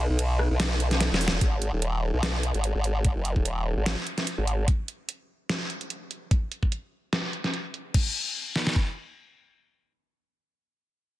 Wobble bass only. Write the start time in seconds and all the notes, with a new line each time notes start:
0.09 B1
0.50 B1
1.12 E1
1.32 E1
1.41 G#1
1.73 D#1
2.14 B1
2.54 G#1
2.75 G#1
3.16 F#1
3.36 D#1
3.77 G#1
4.38 G#1